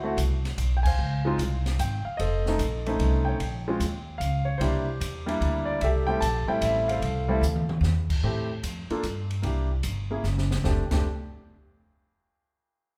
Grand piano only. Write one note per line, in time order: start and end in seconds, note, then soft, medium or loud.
0.00 0.16 A3 medium
0.00 0.16 C4 medium
0.00 0.53 C5 medium
0.05 0.17 E4 medium
0.05 0.17 F#4 medium
0.77 0.86 G5 medium
0.83 1.76 C5 medium
0.83 1.76 F5 medium
0.83 1.74 G#5 medium
1.25 1.37 G#3 medium
1.25 1.38 C4 medium
1.25 1.38 D#4 medium
1.25 1.38 F4 medium
1.80 2.05 G5 medium
2.05 2.18 F5 medium
2.17 2.96 A4 medium
2.17 2.96 C5 medium
2.17 2.95 D#5 medium
2.48 2.59 A3 medium
2.48 2.59 C4 medium
2.48 2.59 C#4 medium
2.48 2.60 D#4 medium
2.87 3.38 A3 medium
2.87 3.38 C4 medium
2.87 3.38 C#4 medium
2.87 3.39 D#4 medium
3.25 4.17 C#5 medium
3.25 4.16 G5 medium
3.68 3.80 G#3 medium
3.68 3.80 C4 medium
3.68 3.80 C#4 medium
3.68 3.80 F4 medium
4.18 4.47 F5 medium
4.45 4.60 C#5 medium
4.58 4.85 G3 medium
4.58 4.85 A#3 medium
4.58 4.85 D4 medium
4.58 4.85 E4 medium
4.58 5.38 G4 medium
4.58 5.36 C5 medium
5.26 5.78 G3 medium
5.26 5.78 A#3 medium
5.26 5.79 D4 medium
5.26 5.79 E4 medium
5.65 5.79 D5 medium
5.81 6.46 G4 medium
5.81 6.46 A4 medium
5.81 5.87 E5 loud
6.07 6.20 G3 medium
6.07 6.20 A3 medium
6.07 6.20 C4 medium
6.07 6.21 E4 medium
6.07 6.20 G5 loud
6.21 6.46 A5 loud
6.47 6.99 G3 medium
6.47 6.99 A3 medium
6.47 6.99 C4 medium
6.47 7.00 E4 medium
6.47 6.61 G5 medium
6.62 6.87 E5 medium
6.88 7.67 A4 medium
6.88 7.67 C5 medium
6.88 7.65 F5 medium
7.28 7.41 G3 medium
7.28 7.41 A3 medium
7.28 7.41 C4 medium
7.28 7.42 E4 medium
8.24 8.48 A3 medium
8.24 8.48 C4 medium
8.24 8.48 E4 medium
8.24 8.48 G4 medium
8.91 9.03 A#3 medium
8.91 9.03 D4 medium
8.91 9.03 F4 medium
8.91 9.03 A4 medium
9.42 9.68 A#3 medium
9.42 9.68 D4 soft
9.42 9.68 E4 soft
9.42 9.69 G4 medium
10.11 10.23 A#3 medium
10.11 10.23 C#4 medium
10.11 10.23 E4 medium
10.11 10.23 G#4 medium
10.64 10.81 A3 medium
10.64 10.81 C4 medium
10.64 10.82 D4 medium
10.64 10.82 G4 medium
10.92 11.04 A3 medium
10.92 11.04 C4 medium
10.92 11.04 D4 medium
10.92 11.05 G4 medium